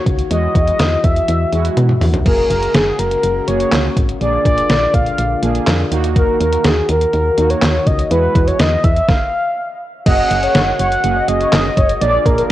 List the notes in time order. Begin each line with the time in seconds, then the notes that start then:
Already playing: D#3 F#3 A#3 F#4
0.06 C#2, kick, closed hi-hat
0.19 closed hi-hat
0.30 E2 E3 G#3 B3 E4 F#4 D#5, closed hi-hat
0.55 E2 D#5, kick, closed hi-hat
0.67 closed hi-hat
0.79 E2, snare, closed hi-hat
1.04 E2 E5, kick, closed hi-hat
1.16 closed hi-hat
1.28 E2, closed hi-hat
1.53 E2 G#3 E4 F#4, closed hi-hat
1.65 closed hi-hat
1.77 B2, closed hi-hat, high tom
1.89 mid tom
2.01 E2, mid tom, open hi-hat
2.14 closed hi-hat, floor tom
2.25 F#1 C#3 G#3 A#3 F#4 G#4 A#4, kick, crash
2.50 F#1 A#4, closed hi-hat
2.62 closed hi-hat
2.74 F#1 G#4, snare, closed hi-hat
2.99 F#1 A#4, closed hi-hat
3.11 closed hi-hat
3.23 F#1, closed hi-hat
3.48 F#1 A#3 F#4 G#4 C#5, closed hi-hat
3.60 closed hi-hat
3.72 C#2, snare, clap, closed hi-hat
3.97 G#1, kick, closed hi-hat
4.09 closed hi-hat
4.21 A#1 D3 A#3 D4 F4 G#4 D5, closed hi-hat
4.45 A#1 D5, kick, closed hi-hat
4.58 closed hi-hat
4.70 A#1, snare, closed hi-hat
4.94 A#1 F5, kick, closed hi-hat
5.06 closed hi-hat
5.18 A#1, closed hi-hat
5.43 A#1 A#3 D4 G#4, closed hi-hat
5.55 closed hi-hat
5.67 F2, snare, clap, closed hi-hat
5.92 D#2 D#3 F#3 A#3 D#4 F#4, closed hi-hat
6.04 closed hi-hat
6.16 A#4, kick, closed hi-hat
6.40 D#2 A#4, closed hi-hat
6.53 closed hi-hat
6.64 D#2 G#4, snare, closed hi-hat
6.89 D#2 A#4, closed hi-hat
7.01 closed hi-hat
7.13 D#2, closed hi-hat
7.38 D#2 A#3 D#4 F#4, closed hi-hat
7.50 C#5, closed hi-hat
7.62 D#2, snare, clap, closed hi-hat
7.87 C#2 D#5, kick, closed hi-hat
7.99 closed hi-hat
8.11 E2 E3 G#3 B3 E4 F#4 B4, closed hi-hat
8.35 E2, kick, closed hi-hat
8.48 C#5, closed hi-hat
8.60 E2 D#5, snare, closed hi-hat
8.84 E2 E5, kick, closed hi-hat
8.97 closed hi-hat
9.09 F5, kick, snare
10.06 F#1 C#3 G#3 A#3 C#4 F#4 G#4 D#5 F#5, kick, closed hi-hat, crash
10.31 F#1, closed hi-hat
10.43 C#5, closed hi-hat
10.55 F#1, snare, closed hi-hat
10.79 F#1 C#5 F#5, closed hi-hat
10.92 closed hi-hat
11.04 F#1 A#3 C#4 F#4 G#4, closed hi-hat
11.16 D#5
11.28 F#1 A#3 C#4 F#4 G#4 D#5, closed hi-hat
11.40 C#5, closed hi-hat
11.52 F#1, snare, clap, closed hi-hat
11.77 F#1 C#5, kick, closed hi-hat
11.89 closed hi-hat
12.01 A#1 D3 A#3 D4 F4 G#4 D5, closed hi-hat
12.26 A#1 A#4, kick, closed hi-hat
12.38 A#4, closed hi-hat